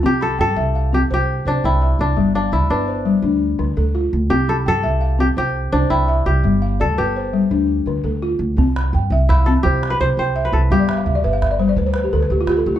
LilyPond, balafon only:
\new Staff \with { instrumentName = "Balafon" } { \time 12/8 \key c \major \tempo 4. = 112 << { f'8 b''8 g''4 f''4 c''4. g''4. | r8 f''4. c''4 d'4. a'4. | r8 b''8 g''4 f''4 c''4. g''4. | r8 f''8 d''4 c''4 d'4. a'4. |
r8 b''8 g''4 f''4 c''4. g''4. | f''16 d''16 e''16 f''16 e''16 d''16 e''16 f''16 e''16 d''16 c''16 d''16 b'16 c''16 b'16 g'16 a'16 b'16 g'16 f'16 g'16 a'16 g'16 e'16 | } \\ { c'4 r8 e''4 c'4 r8 c''4 e''4 | g4 r8 b'4 g8 r4 d4 f'4 | c'4 r8 e''4 c'4 r8 c''4 e''4 | g4 r8 b'4 g8 r4 d4 f'4 |
c'4 r8 e''4 c'4 r8 c''4 e''4 | g4 r8 b'4 g8 r4 d4 f'4 | } >> }